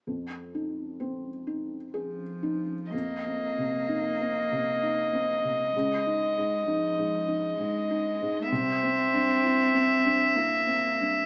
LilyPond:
<<
  \new Staff \with { instrumentName = "Violin" } { \time 3/4 \key f \minor \tempo 4 = 64 r2. | ees''2.~ | ees''2. | e''2. | }
  \new Staff \with { instrumentName = "Felt piano" } { \time 3/4 \key f \minor f,8 ees'8 c'8 ees'8 aes'8 ees'8 | \tuplet 3/2 { f,8 c'8 c8 ees'8 c'8 c8 ees'8 c'8 c8 } | \tuplet 3/2 { des,8 ees'8 aes,8 ees'8 aes,8 ees'8 aes,8 ees'8 aes,8 } | \tuplet 3/2 { c,8 c'8 g,8 e'8 c'8 g,8 e'8 c'8 g,8 } | }
  \new Staff \with { instrumentName = "Cello" } { \clef bass \time 3/4 \key f \minor r2 f4 | bes2. | aes4 f4 aes4 | c'2 bes4 | }
>>